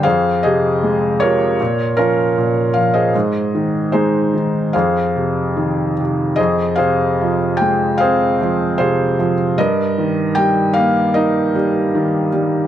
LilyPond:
<<
  \new Staff \with { instrumentName = "Felt piano" } { \time 4/4 \key f \minor \tempo 4 = 76 << { f''8 ees''4 des''4 bes'4 f''16 ees''16~ | ees''4 c''4 f''4. r8 | ees''8 f''4 g''8 f''4 c''8. r16 | ees''4 g''8 f''8 ees''4. r8 | } \\ { <aes' c''>8 <g' aes'>4 <f' bes'>4 <des' f'>4~ <des' f'>16 <aes' c''>16~ | <aes' c''>4 <ees' aes'>4 <aes' c''>2 | <aes' c''>8 <aes' c''>4. <aes' c''>4 <f' aes'>4 | bes'2 bes'2 | } >> }
  \new Staff \with { instrumentName = "Felt piano" } { \clef bass \time 4/4 \key f \minor f,8 c8 aes8 c8 bes,8 f8 bes,8 f8 | aes,8 ees8 aes8 ees8 f,8 c8 ees8 c8 | f,8 c8 f8 aes8 c'8 f8 c8 f8 | g,8 ees8 g8 bes8 ees'8 g8 ees8 g8 | }
>>